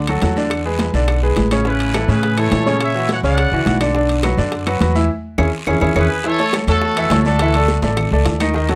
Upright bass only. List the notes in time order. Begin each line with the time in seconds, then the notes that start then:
Already playing: D2
0.22 E2
0.94 B1
1.37 A1
2.08 A2
2.52 A#2
3.23 C#2
3.52 C#2
3.66 B1
4.37 F#2
4.81 E2
5.38 E2
5.67 E2
5.81 E2
5.96 E2
6.67 E2
7.10 D2
7.82 A1
8.11 C#2
8.25 D#2